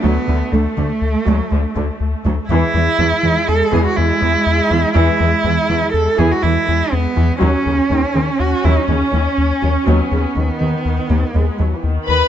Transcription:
<<
  \new Staff \with { instrumentName = "Violin section" } { \time 5/4 \key e \mixolydian \tempo 4 = 122 r1 r4 | r1 r4 | r1 r4 | r1 r4 |
r1 r8 b''8 | }
  \new Staff \with { instrumentName = "Violin section" } { \time 5/4 \key e \mixolydian r1 r4 | r1 r4 | r1 r4 | r1 r4 |
r1 r8 b'8 | }
  \new Staff \with { instrumentName = "Cello" } { \time 5/4 \key e \mixolydian b4 a2. r4 | e'2 a'8 gis'16 fis'16 e'2 | e'2 a'8 gis'16 fis'16 e'4 b4 | cis'2 fis'8 e'16 dis'16 cis'2 |
b1 r4 | }
  \new Staff \with { instrumentName = "Viola section" } { \clef bass \time 5/4 \key e \mixolydian << { a1~ a4 | gis1~ gis4~ | gis1~ gis4 | cis'1~ cis'4~ |
cis'4 dis2 gis8 fis16 e16 dis4 | } \\ { fis8 d8 d8 d8 r8 fis8 d8 d8 r8 fis8 | e8 e8 e8 e8 r8 e8 e8 e8 r8 e8 | e8 e8 e8 e8 r8 e8 e8 e8 r8 e8 | fis8 cis8 dis8 cis8 r8 fis8 cis8 dis8 r8 fis8 |
fis8 cis8 r1 | } >> }
  \new Staff \with { instrumentName = "Analog synth bass" } { \clef bass \time 5/4 \key e \mixolydian d,8 d,8 d,8 d8 d,8 d,8 d,8 d,8 d,8 d,8 | e,8 e,8 e,8 e8 e,8 e,8 e,8 e,8 e,8 e,8 | e,8 e,8 e,8 e8 e,8 e,8 e,8 e,8 e,8 e,8 | dis,8 dis,8 dis,8 dis8 dis,8 dis,8 dis,8 dis,8 dis,8 dis,8 |
dis,8 dis,8 dis,8 dis8 dis,8 dis,8 dis,8 dis,8 dis,8 dis,8 | }
  \new Staff \with { instrumentName = "Cello section" } { \clef bass \time 5/4 \key e \mixolydian d,8 d,8 d,8 d,8 r8 d,8 d,8 d,8 r8 d,8 | e,8 e,8 e,8 e,8 r8 e,8 e,8 e,8 r8 e,8 | e,8 e,8 e,8 e,8 r8 e,8 e,8 e,8 r8 e,8 | dis,8 dis,8 dis,8 dis,8 r8 dis,8 dis,8 dis,8 r8 dis,8 |
dis,8 dis,8 dis,8 dis,8 r8 dis,8 dis,8 dis,8 r8 dis,8 | }
>>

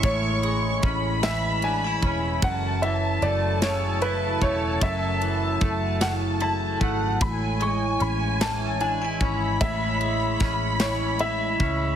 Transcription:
<<
  \new Staff \with { instrumentName = "Violin section" } { \time 6/8 \key a \major \tempo 4. = 50 cis'''4 b''2 | a''2.~ | a''2~ a''8 fis''8 | gis''2~ gis''8 b''8~ |
b''2. | }
  \new Staff \with { instrumentName = "Grand piano" } { \time 6/8 \key a \major cis''4 r8 e''8 gis''4 | fis''8 e''8 d''8 cis''8 b'8 cis''8 | e''4. fis''8 a''4 | b''8 cis'''8 b''8 a''8 gis''4 |
e''4 r8 cis''8 e''4 | }
  \new Staff \with { instrumentName = "Analog synth pad" } { \time 6/8 \key a \major <gis e' cis''>2. | <fis e' a'>2.~ | <fis e' a'>2. | <gis e' cis''>2.~ |
<gis e' cis''>2. | }
  \new Staff \with { instrumentName = "Clean electric guitar" } { \time 6/8 \key a \major <a, e gis cis' e'>8 gis8 cis'8 e8 d'16 e'16 cis'8 | fis,8 e8 a8 cis8 e'8 a8 | fis,8 e8 a8 cis8 e'8 a8 | r8 gis8 cis'8 e8 d'16 e'16 cis'8 |
a,8 gis8 cis'8 e8 e'8 cis'8 | }
  \new Staff \with { instrumentName = "Fingered electric bass" } { \clef bass \time 6/8 \key a \major a,,4 a,,4. e,,8 | fis,,4 fis,,4. e,,8 | fis,,4 fis,,4. gis,,8 | a,,4 a,,4. gis,,8 |
a,,4 a,,4. cis,8 | }
  \new DrumStaff \with { instrumentName = "Drums" } \drummode { \time 6/8 <bd cymr>8 cymr8 <bd cymr>8 <cymr sn>8 cymr8 <bd cymr>8 | <bd cymr>8 cymr8 cymr8 <cymr sn>8 cymr8 <bd cymr>8 | <bd cymr>8 cymr8 <bd cymr>8 <cymr sn>8 cymr8 <bd cymr>8 | <bd cymr>8 cymr8 cymr8 <cymr sn>8 cymr8 <bd cymr>8 |
<bd cymr>8 cymr8 <bd cymr sn>8 <cymr sn>8 cymr8 <bd cymr>8 | }
>>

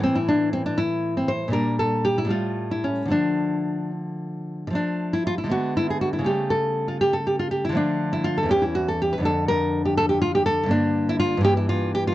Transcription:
\new Staff \with { instrumentName = "Nylon-string guitar" } { \time 6/8 \key d \minor \tempo 4. = 80 << { c'16 e'16 d'8 c'16 d'16 e'8. c'16 c''8 | bes'8 a'8 g'16 e'16 f'8. e'16 cis'8 | d'4. r4. | d'8. e'16 f'16 e'16 fis'8 e'16 gis'16 fis'16 e'16 |
g'8 a'8. f'16 g'16 a'16 g'16 f'16 g'16 e'16 | d'8. e'16 f'16 a'16 g'16 e'16 fis'16 a'16 g'16 b'16 | a'8 bes'8. g'16 a'16 g'16 f'16 g'16 a'8 | d'8. e'16 f'8 g'16 e'16 f'8 g'16 f'16 | } \\ { <a, e>2. | <bes, g d'>4. <a, g a>4. | <d f a>2. | <d f a>4. <d gis b>4. |
<cis g a>2. | <d f a>4. <e, e cis'>4. | <f, d d'>2. | <g, d bes>4. <g, e bes>4. | } >> }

